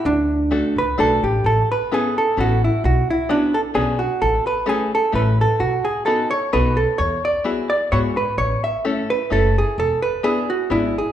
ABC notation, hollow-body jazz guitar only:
X:1
M:3/4
L:1/8
Q:"Swing" 1/4=130
K:D
V:1 name="Hollow-body jazz guitar"
D3 B A G | [K:A] A B G A F E | F E D A G F | A B G A B A |
F G A c B A | c d z d c B | c e z B A G | A B G F E G |]